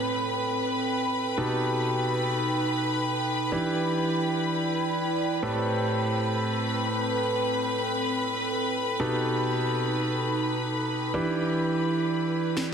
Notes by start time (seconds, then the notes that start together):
Already playing: A2 C4 G4 A4 B4 G5 B5, downlifter
1.38 B2 D#4 G4 A4 B4
3.52 E3 D4 E4 G4 B4
3.99 D5
5.42 A2 C4 G4 A4 B4 B5
5.69 A4
6.14 B4
9.00 B2 D#4 G4 A4 B4
11.14 E3 D4 E4 G4 B4
11.55 D5
12.57 snare